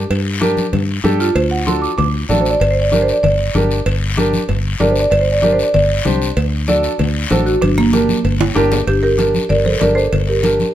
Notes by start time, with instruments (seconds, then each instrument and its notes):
Already playing: marimba G4
0.10 fingered electric bass G2, cowbell, long guiro
0.41 upright piano D4 G4 A#4, high conga, short guiro
0.57 high conga, short guiro
0.73 fingered electric bass G2, cowbell, low conga, long guiro
1.04 fingered electric bass G2, upright piano D4 G4 A4, high conga, low timbale, short guiro
1.20 marimba F4, short guiro
1.35 fingered electric bass D2, marimba C5, cowbell, long guiro
1.51 marimba F#5
1.66 upright piano D4 F#4 A4, marimba C6, high conga, short guiro
1.82 marimba D6, short guiro
1.98 fingered electric bass D2, marimba D6, cowbell, low conga, long guiro
2.29 fingered electric bass A1, upright piano D4 F#4 A4, marimba D5, high conga, short guiro
2.41 marimba C5
2.45 short guiro
2.50 marimba D5
2.60 fingered electric bass G1, marimba D5, cowbell, long guiro
2.71 marimba C5
2.82 marimba D5
2.92 upright piano D4 G4 A#4, marimba D5, high conga, short guiro
3.02 marimba C5
3.08 marimba D5, short guiro
3.23 fingered electric bass G1, marimba D5, cowbell, low conga, long guiro
3.55 fingered electric bass G1, upright piano D4 G4 A#4, high conga, low timbale, short guiro
3.71 short guiro
3.86 fingered electric bass G1, cowbell, long guiro
4.17 upright piano D4 G4 A#4, high conga, short guiro
4.33 high conga, short guiro
4.49 fingered electric bass G1, cowbell, low conga, long guiro
4.80 fingered electric bass G1, upright piano D4 G4 A#4, marimba D5, high conga, low timbale, short guiro
4.91 marimba C5
4.96 short guiro
5.00 marimba D5
5.11 fingered electric bass G1, marimba D5, cowbell, long guiro
5.21 marimba C5
5.32 marimba D5
5.42 upright piano D4 G4 A#4, marimba D5, high conga, short guiro
5.53 marimba C5
5.59 short guiro
5.64 marimba D5
5.74 fingered electric bass G1, marimba D5, cowbell, low conga, long guiro
6.05 fingered electric bass C2, upright piano D4 G4 C5, high conga, low conga, short guiro
6.22 short guiro
6.37 fingered electric bass D2, cowbell, long guiro
6.68 upright piano D4 F#4 A4, marimba D5, high conga, short guiro
6.83 short guiro
6.99 fingered electric bass D2, cowbell, low conga, long guiro
7.30 fingered electric bass A1, upright piano D4 F#4 A4, marimba C5, high conga, low timbale, short guiro
7.46 marimba F#4, short guiro
7.62 fingered electric bass G1, marimba D4, cowbell, high conga, long guiro
7.78 marimba A#3, high conga
7.93 upright piano D4 G4 A#4, high conga, short guiro
8.09 high conga, short guiro
8.24 fingered electric bass G1, cowbell, long guiro
8.40 low conga, high timbale
8.55 fingered electric bass G1, upright piano D4 G4 A#4, low conga, high timbale, short guiro
8.72 low conga, low timbale, short guiro
8.87 fingered electric bass G1, marimba D4 G4, cowbell, high conga, long guiro
9.03 marimba G4 A#4
9.18 upright piano D4 G4 A#4, cowbell, high conga, short guiro
9.34 high conga, short guiro
9.49 fingered electric bass G1, marimba A#4 D5, cowbell, high conga, low conga, long guiro
9.64 marimba A4 C5, high conga
9.80 fingered electric bass G1, upright piano D4 G4 A#4, marimba A#4 D5, cowbell, high conga, low timbale, short guiro
9.95 marimba A4 C5, short guiro
10.12 fingered electric bass G1, cowbell, high conga, low conga, long guiro
10.27 marimba G4 A#4
10.43 upright piano D4 G4 A#4, marimba G4 A#4, cowbell, high conga, short guiro
10.60 high conga, short guiro